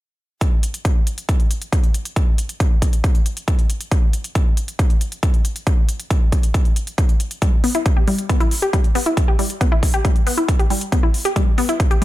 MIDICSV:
0, 0, Header, 1, 3, 480
1, 0, Start_track
1, 0, Tempo, 437956
1, 452, Time_signature, 4, 2, 24, 8
1, 13199, End_track
2, 0, Start_track
2, 0, Title_t, "Synth arpeggio sound"
2, 0, Program_c, 0, 84
2, 8131, Note_on_c, 0, 55, 79
2, 8212, Note_off_c, 0, 55, 0
2, 8371, Note_on_c, 0, 59, 72
2, 8452, Note_off_c, 0, 59, 0
2, 8491, Note_on_c, 0, 64, 74
2, 8605, Note_off_c, 0, 64, 0
2, 8731, Note_on_c, 0, 67, 73
2, 8780, Note_off_c, 0, 67, 0
2, 8851, Note_on_c, 0, 55, 73
2, 8932, Note_off_c, 0, 55, 0
2, 9091, Note_on_c, 0, 59, 79
2, 9172, Note_off_c, 0, 59, 0
2, 9211, Note_on_c, 0, 64, 74
2, 9325, Note_off_c, 0, 64, 0
2, 9451, Note_on_c, 0, 67, 73
2, 9500, Note_off_c, 0, 67, 0
2, 9572, Note_on_c, 0, 55, 80
2, 9652, Note_off_c, 0, 55, 0
2, 9812, Note_on_c, 0, 59, 75
2, 9892, Note_off_c, 0, 59, 0
2, 9932, Note_on_c, 0, 64, 71
2, 10046, Note_off_c, 0, 64, 0
2, 10172, Note_on_c, 0, 67, 72
2, 10220, Note_off_c, 0, 67, 0
2, 10292, Note_on_c, 0, 55, 73
2, 10372, Note_off_c, 0, 55, 0
2, 10532, Note_on_c, 0, 59, 81
2, 10612, Note_off_c, 0, 59, 0
2, 10652, Note_on_c, 0, 64, 75
2, 10766, Note_off_c, 0, 64, 0
2, 10892, Note_on_c, 0, 67, 74
2, 10940, Note_off_c, 0, 67, 0
2, 11011, Note_on_c, 0, 55, 79
2, 11092, Note_off_c, 0, 55, 0
2, 11252, Note_on_c, 0, 59, 74
2, 11332, Note_off_c, 0, 59, 0
2, 11371, Note_on_c, 0, 64, 72
2, 11485, Note_off_c, 0, 64, 0
2, 11611, Note_on_c, 0, 67, 74
2, 11660, Note_off_c, 0, 67, 0
2, 11731, Note_on_c, 0, 55, 75
2, 11812, Note_off_c, 0, 55, 0
2, 11971, Note_on_c, 0, 59, 77
2, 12052, Note_off_c, 0, 59, 0
2, 12091, Note_on_c, 0, 64, 72
2, 12205, Note_off_c, 0, 64, 0
2, 12331, Note_on_c, 0, 67, 73
2, 12380, Note_off_c, 0, 67, 0
2, 12451, Note_on_c, 0, 55, 81
2, 12532, Note_off_c, 0, 55, 0
2, 12691, Note_on_c, 0, 59, 76
2, 12772, Note_off_c, 0, 59, 0
2, 12811, Note_on_c, 0, 64, 76
2, 12925, Note_off_c, 0, 64, 0
2, 13051, Note_on_c, 0, 67, 76
2, 13100, Note_off_c, 0, 67, 0
2, 13199, End_track
3, 0, Start_track
3, 0, Title_t, "Drums"
3, 451, Note_on_c, 9, 36, 109
3, 451, Note_on_c, 9, 42, 77
3, 561, Note_off_c, 9, 36, 0
3, 561, Note_off_c, 9, 42, 0
3, 691, Note_on_c, 9, 42, 75
3, 801, Note_off_c, 9, 42, 0
3, 812, Note_on_c, 9, 42, 51
3, 921, Note_off_c, 9, 42, 0
3, 931, Note_on_c, 9, 36, 104
3, 932, Note_on_c, 9, 42, 74
3, 1041, Note_off_c, 9, 36, 0
3, 1041, Note_off_c, 9, 42, 0
3, 1171, Note_on_c, 9, 42, 74
3, 1281, Note_off_c, 9, 42, 0
3, 1291, Note_on_c, 9, 42, 49
3, 1401, Note_off_c, 9, 42, 0
3, 1411, Note_on_c, 9, 36, 109
3, 1411, Note_on_c, 9, 42, 75
3, 1521, Note_off_c, 9, 36, 0
3, 1521, Note_off_c, 9, 42, 0
3, 1532, Note_on_c, 9, 42, 34
3, 1641, Note_off_c, 9, 42, 0
3, 1651, Note_on_c, 9, 42, 72
3, 1761, Note_off_c, 9, 42, 0
3, 1771, Note_on_c, 9, 42, 48
3, 1881, Note_off_c, 9, 42, 0
3, 1891, Note_on_c, 9, 36, 107
3, 1891, Note_on_c, 9, 42, 76
3, 2001, Note_off_c, 9, 36, 0
3, 2001, Note_off_c, 9, 42, 0
3, 2011, Note_on_c, 9, 42, 34
3, 2121, Note_off_c, 9, 42, 0
3, 2131, Note_on_c, 9, 42, 75
3, 2241, Note_off_c, 9, 42, 0
3, 2252, Note_on_c, 9, 42, 52
3, 2361, Note_off_c, 9, 42, 0
3, 2371, Note_on_c, 9, 36, 111
3, 2372, Note_on_c, 9, 42, 74
3, 2481, Note_off_c, 9, 36, 0
3, 2481, Note_off_c, 9, 42, 0
3, 2612, Note_on_c, 9, 42, 74
3, 2721, Note_off_c, 9, 42, 0
3, 2732, Note_on_c, 9, 42, 50
3, 2841, Note_off_c, 9, 42, 0
3, 2851, Note_on_c, 9, 36, 111
3, 2852, Note_on_c, 9, 42, 71
3, 2961, Note_off_c, 9, 36, 0
3, 2962, Note_off_c, 9, 42, 0
3, 3091, Note_on_c, 9, 36, 58
3, 3092, Note_on_c, 9, 42, 70
3, 3201, Note_off_c, 9, 36, 0
3, 3202, Note_off_c, 9, 42, 0
3, 3212, Note_on_c, 9, 42, 50
3, 3322, Note_off_c, 9, 42, 0
3, 3331, Note_on_c, 9, 36, 116
3, 3332, Note_on_c, 9, 42, 75
3, 3441, Note_off_c, 9, 36, 0
3, 3441, Note_off_c, 9, 42, 0
3, 3451, Note_on_c, 9, 42, 35
3, 3561, Note_off_c, 9, 42, 0
3, 3571, Note_on_c, 9, 42, 73
3, 3681, Note_off_c, 9, 42, 0
3, 3691, Note_on_c, 9, 42, 48
3, 3801, Note_off_c, 9, 42, 0
3, 3811, Note_on_c, 9, 36, 109
3, 3812, Note_on_c, 9, 42, 76
3, 3921, Note_off_c, 9, 36, 0
3, 3921, Note_off_c, 9, 42, 0
3, 3931, Note_on_c, 9, 42, 33
3, 4041, Note_off_c, 9, 42, 0
3, 4051, Note_on_c, 9, 42, 74
3, 4161, Note_off_c, 9, 42, 0
3, 4171, Note_on_c, 9, 42, 50
3, 4281, Note_off_c, 9, 42, 0
3, 4291, Note_on_c, 9, 36, 118
3, 4291, Note_on_c, 9, 42, 73
3, 4401, Note_off_c, 9, 36, 0
3, 4401, Note_off_c, 9, 42, 0
3, 4531, Note_on_c, 9, 42, 70
3, 4640, Note_off_c, 9, 42, 0
3, 4651, Note_on_c, 9, 42, 47
3, 4760, Note_off_c, 9, 42, 0
3, 4771, Note_on_c, 9, 36, 111
3, 4771, Note_on_c, 9, 42, 69
3, 4880, Note_off_c, 9, 42, 0
3, 4881, Note_off_c, 9, 36, 0
3, 5011, Note_on_c, 9, 42, 70
3, 5120, Note_off_c, 9, 42, 0
3, 5131, Note_on_c, 9, 42, 47
3, 5240, Note_off_c, 9, 42, 0
3, 5251, Note_on_c, 9, 36, 117
3, 5251, Note_on_c, 9, 42, 73
3, 5360, Note_off_c, 9, 36, 0
3, 5361, Note_off_c, 9, 42, 0
3, 5371, Note_on_c, 9, 42, 33
3, 5481, Note_off_c, 9, 42, 0
3, 5491, Note_on_c, 9, 42, 70
3, 5601, Note_off_c, 9, 42, 0
3, 5611, Note_on_c, 9, 42, 45
3, 5721, Note_off_c, 9, 42, 0
3, 5731, Note_on_c, 9, 36, 112
3, 5731, Note_on_c, 9, 42, 70
3, 5840, Note_off_c, 9, 36, 0
3, 5840, Note_off_c, 9, 42, 0
3, 5851, Note_on_c, 9, 42, 32
3, 5961, Note_off_c, 9, 42, 0
3, 5971, Note_on_c, 9, 42, 70
3, 6080, Note_off_c, 9, 42, 0
3, 6091, Note_on_c, 9, 42, 49
3, 6201, Note_off_c, 9, 42, 0
3, 6211, Note_on_c, 9, 36, 111
3, 6211, Note_on_c, 9, 42, 71
3, 6320, Note_off_c, 9, 36, 0
3, 6321, Note_off_c, 9, 42, 0
3, 6451, Note_on_c, 9, 42, 70
3, 6561, Note_off_c, 9, 42, 0
3, 6571, Note_on_c, 9, 42, 46
3, 6681, Note_off_c, 9, 42, 0
3, 6691, Note_on_c, 9, 36, 115
3, 6691, Note_on_c, 9, 42, 69
3, 6800, Note_off_c, 9, 36, 0
3, 6801, Note_off_c, 9, 42, 0
3, 6931, Note_on_c, 9, 36, 58
3, 6931, Note_on_c, 9, 42, 68
3, 7040, Note_off_c, 9, 42, 0
3, 7041, Note_off_c, 9, 36, 0
3, 7051, Note_on_c, 9, 42, 46
3, 7161, Note_off_c, 9, 42, 0
3, 7171, Note_on_c, 9, 36, 115
3, 7171, Note_on_c, 9, 42, 68
3, 7281, Note_off_c, 9, 36, 0
3, 7281, Note_off_c, 9, 42, 0
3, 7291, Note_on_c, 9, 42, 33
3, 7401, Note_off_c, 9, 42, 0
3, 7411, Note_on_c, 9, 42, 69
3, 7521, Note_off_c, 9, 42, 0
3, 7531, Note_on_c, 9, 42, 46
3, 7641, Note_off_c, 9, 42, 0
3, 7651, Note_on_c, 9, 36, 111
3, 7651, Note_on_c, 9, 42, 70
3, 7760, Note_off_c, 9, 42, 0
3, 7761, Note_off_c, 9, 36, 0
3, 7771, Note_on_c, 9, 42, 32
3, 7880, Note_off_c, 9, 42, 0
3, 7891, Note_on_c, 9, 42, 69
3, 8000, Note_off_c, 9, 42, 0
3, 8011, Note_on_c, 9, 42, 47
3, 8120, Note_off_c, 9, 42, 0
3, 8131, Note_on_c, 9, 36, 110
3, 8131, Note_on_c, 9, 42, 74
3, 8240, Note_off_c, 9, 42, 0
3, 8241, Note_off_c, 9, 36, 0
3, 8371, Note_on_c, 9, 46, 98
3, 8481, Note_off_c, 9, 46, 0
3, 8491, Note_on_c, 9, 42, 48
3, 8601, Note_off_c, 9, 42, 0
3, 8611, Note_on_c, 9, 36, 109
3, 8611, Note_on_c, 9, 42, 69
3, 8720, Note_off_c, 9, 42, 0
3, 8721, Note_off_c, 9, 36, 0
3, 8851, Note_on_c, 9, 46, 86
3, 8960, Note_off_c, 9, 46, 0
3, 8971, Note_on_c, 9, 42, 47
3, 9081, Note_off_c, 9, 42, 0
3, 9091, Note_on_c, 9, 36, 113
3, 9091, Note_on_c, 9, 42, 69
3, 9201, Note_off_c, 9, 36, 0
3, 9201, Note_off_c, 9, 42, 0
3, 9211, Note_on_c, 9, 42, 33
3, 9321, Note_off_c, 9, 42, 0
3, 9331, Note_on_c, 9, 46, 99
3, 9441, Note_off_c, 9, 46, 0
3, 9452, Note_on_c, 9, 42, 45
3, 9561, Note_off_c, 9, 42, 0
3, 9571, Note_on_c, 9, 36, 105
3, 9572, Note_on_c, 9, 42, 72
3, 9681, Note_off_c, 9, 36, 0
3, 9681, Note_off_c, 9, 42, 0
3, 9692, Note_on_c, 9, 42, 32
3, 9802, Note_off_c, 9, 42, 0
3, 9812, Note_on_c, 9, 46, 86
3, 9921, Note_off_c, 9, 46, 0
3, 9932, Note_on_c, 9, 42, 49
3, 10042, Note_off_c, 9, 42, 0
3, 10051, Note_on_c, 9, 36, 108
3, 10051, Note_on_c, 9, 42, 77
3, 10161, Note_off_c, 9, 36, 0
3, 10161, Note_off_c, 9, 42, 0
3, 10292, Note_on_c, 9, 46, 96
3, 10401, Note_off_c, 9, 46, 0
3, 10412, Note_on_c, 9, 42, 50
3, 10521, Note_off_c, 9, 42, 0
3, 10531, Note_on_c, 9, 36, 105
3, 10532, Note_on_c, 9, 42, 71
3, 10641, Note_off_c, 9, 36, 0
3, 10641, Note_off_c, 9, 42, 0
3, 10771, Note_on_c, 9, 36, 55
3, 10772, Note_on_c, 9, 46, 82
3, 10881, Note_off_c, 9, 36, 0
3, 10881, Note_off_c, 9, 46, 0
3, 10892, Note_on_c, 9, 42, 50
3, 11001, Note_off_c, 9, 42, 0
3, 11011, Note_on_c, 9, 36, 108
3, 11012, Note_on_c, 9, 42, 74
3, 11121, Note_off_c, 9, 36, 0
3, 11122, Note_off_c, 9, 42, 0
3, 11132, Note_on_c, 9, 42, 35
3, 11242, Note_off_c, 9, 42, 0
3, 11252, Note_on_c, 9, 46, 93
3, 11362, Note_off_c, 9, 46, 0
3, 11372, Note_on_c, 9, 42, 48
3, 11482, Note_off_c, 9, 42, 0
3, 11491, Note_on_c, 9, 36, 102
3, 11492, Note_on_c, 9, 42, 74
3, 11601, Note_off_c, 9, 36, 0
3, 11602, Note_off_c, 9, 42, 0
3, 11612, Note_on_c, 9, 42, 34
3, 11722, Note_off_c, 9, 42, 0
3, 11731, Note_on_c, 9, 46, 85
3, 11841, Note_off_c, 9, 46, 0
3, 11851, Note_on_c, 9, 42, 50
3, 11961, Note_off_c, 9, 42, 0
3, 11971, Note_on_c, 9, 36, 107
3, 11972, Note_on_c, 9, 42, 79
3, 12081, Note_off_c, 9, 36, 0
3, 12081, Note_off_c, 9, 42, 0
3, 12211, Note_on_c, 9, 46, 95
3, 12321, Note_off_c, 9, 46, 0
3, 12331, Note_on_c, 9, 42, 52
3, 12441, Note_off_c, 9, 42, 0
3, 12451, Note_on_c, 9, 36, 107
3, 12451, Note_on_c, 9, 42, 75
3, 12561, Note_off_c, 9, 36, 0
3, 12561, Note_off_c, 9, 42, 0
3, 12691, Note_on_c, 9, 46, 83
3, 12801, Note_off_c, 9, 46, 0
3, 12811, Note_on_c, 9, 42, 52
3, 12921, Note_off_c, 9, 42, 0
3, 12931, Note_on_c, 9, 36, 111
3, 12932, Note_on_c, 9, 42, 75
3, 13041, Note_off_c, 9, 36, 0
3, 13041, Note_off_c, 9, 42, 0
3, 13052, Note_on_c, 9, 42, 36
3, 13162, Note_off_c, 9, 42, 0
3, 13199, End_track
0, 0, End_of_file